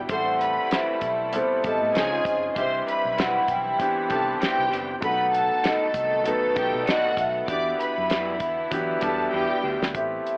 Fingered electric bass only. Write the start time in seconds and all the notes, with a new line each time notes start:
0.10 A1
1.02 B1
1.64 A1
1.82 A2
1.95 C#2
2.26 G1
2.57 C2
3.05 B1
3.49 B1
4.11 C2
4.58 C2
4.72 F#1
5.03 B1
5.95 C2
6.57 B1
6.74 B2
7.17 B1
7.48 E2
7.98 F#2
8.40 E2
8.72 E3
9.03 E2
9.33 E2
9.64 D2
9.82 D2
9.95 A1